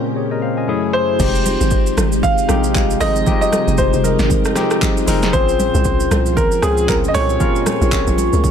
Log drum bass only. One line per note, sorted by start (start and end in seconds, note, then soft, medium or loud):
1.20 1.57 F1 loud
1.61 1.94 G#1 medium
1.97 2.34 G#1 medium
2.49 2.97 A#1 medium
3.01 3.24 G#1 loud
3.67 3.91 F1 loud
3.93 4.17 F1 loud
4.19 4.29 G#1 medium
5.08 5.35 F1 medium
5.33 5.70 A#1 loud
5.74 6.08 C2 loud
6.11 6.48 C2 medium
6.63 7.11 C#2 loud
7.15 7.38 C2 loud
7.81 8.05 A#1 loud
8.07 8.30 A#1 medium
8.33 8.43 C#2 medium